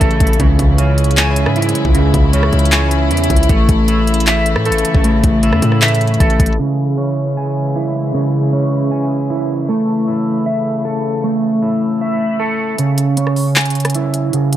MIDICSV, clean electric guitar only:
0, 0, Header, 1, 2, 480
1, 0, Start_track
1, 0, Key_signature, 4, "minor"
1, 0, Tempo, 387097
1, 492, Time_signature, 4, 2, 24, 8
1, 18064, End_track
2, 0, Start_track
2, 0, Title_t, "Clean electric guitar"
2, 0, Program_c, 0, 27
2, 0, Note_on_c, 0, 57, 92
2, 0, Note_on_c, 0, 64, 91
2, 0, Note_on_c, 0, 76, 108
2, 9, Note_on_c, 0, 69, 92
2, 489, Note_off_c, 0, 57, 0
2, 491, Note_off_c, 0, 69, 0
2, 494, Note_off_c, 0, 64, 0
2, 494, Note_off_c, 0, 76, 0
2, 494, Note_on_c, 0, 49, 99
2, 972, Note_on_c, 0, 61, 92
2, 1460, Note_on_c, 0, 80, 115
2, 1938, Note_on_c, 0, 64, 90
2, 2397, Note_off_c, 0, 49, 0
2, 2412, Note_on_c, 0, 49, 93
2, 2880, Note_off_c, 0, 61, 0
2, 2895, Note_on_c, 0, 61, 94
2, 3359, Note_off_c, 0, 80, 0
2, 3374, Note_on_c, 0, 80, 107
2, 3841, Note_off_c, 0, 64, 0
2, 3855, Note_on_c, 0, 64, 92
2, 4331, Note_on_c, 0, 57, 98
2, 4332, Note_off_c, 0, 49, 0
2, 4333, Note_off_c, 0, 80, 0
2, 4334, Note_off_c, 0, 61, 0
2, 4334, Note_off_c, 0, 64, 0
2, 4811, Note_on_c, 0, 64, 87
2, 5294, Note_on_c, 0, 76, 107
2, 5776, Note_on_c, 0, 69, 90
2, 6240, Note_off_c, 0, 57, 0
2, 6255, Note_on_c, 0, 57, 88
2, 6721, Note_off_c, 0, 64, 0
2, 6736, Note_on_c, 0, 64, 93
2, 7200, Note_off_c, 0, 76, 0
2, 7215, Note_on_c, 0, 76, 104
2, 7675, Note_off_c, 0, 69, 0
2, 7689, Note_on_c, 0, 69, 91
2, 8168, Note_off_c, 0, 57, 0
2, 8171, Note_off_c, 0, 69, 0
2, 8173, Note_on_c, 0, 49, 88
2, 8174, Note_off_c, 0, 64, 0
2, 8174, Note_off_c, 0, 76, 0
2, 8652, Note_on_c, 0, 61, 86
2, 9140, Note_on_c, 0, 80, 104
2, 9618, Note_on_c, 0, 64, 86
2, 10077, Note_off_c, 0, 49, 0
2, 10092, Note_on_c, 0, 49, 93
2, 10561, Note_off_c, 0, 61, 0
2, 10576, Note_on_c, 0, 61, 90
2, 11038, Note_off_c, 0, 80, 0
2, 11053, Note_on_c, 0, 80, 105
2, 11519, Note_off_c, 0, 64, 0
2, 11533, Note_on_c, 0, 64, 87
2, 12012, Note_off_c, 0, 49, 0
2, 12012, Note_on_c, 0, 57, 94
2, 12013, Note_off_c, 0, 64, 0
2, 12013, Note_off_c, 0, 80, 0
2, 12014, Note_off_c, 0, 61, 0
2, 12490, Note_on_c, 0, 64, 84
2, 12972, Note_on_c, 0, 76, 101
2, 13455, Note_on_c, 0, 69, 81
2, 13919, Note_off_c, 0, 57, 0
2, 13934, Note_on_c, 0, 57, 86
2, 14399, Note_off_c, 0, 64, 0
2, 14414, Note_on_c, 0, 64, 86
2, 14881, Note_off_c, 0, 76, 0
2, 14896, Note_on_c, 0, 76, 99
2, 15356, Note_off_c, 0, 69, 0
2, 15371, Note_on_c, 0, 69, 87
2, 15849, Note_off_c, 0, 57, 0
2, 15852, Note_off_c, 0, 69, 0
2, 15854, Note_off_c, 0, 64, 0
2, 15854, Note_off_c, 0, 76, 0
2, 15854, Note_on_c, 0, 49, 93
2, 16333, Note_on_c, 0, 61, 88
2, 16821, Note_on_c, 0, 80, 109
2, 17299, Note_on_c, 0, 64, 84
2, 17758, Note_off_c, 0, 49, 0
2, 17772, Note_on_c, 0, 49, 91
2, 18064, Note_off_c, 0, 49, 0
2, 18064, Note_off_c, 0, 61, 0
2, 18064, Note_off_c, 0, 64, 0
2, 18064, Note_off_c, 0, 80, 0
2, 18064, End_track
0, 0, End_of_file